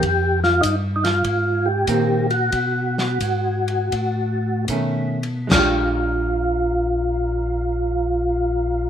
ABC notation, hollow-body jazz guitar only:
X:1
M:4/4
L:1/8
Q:"Swing" 1/4=81
K:Bbmix
V:1 name="Hollow-body jazz guitar"
z6 [E,B,C] z | z6 [^D,=A,^C] z | [A,DG]8 |]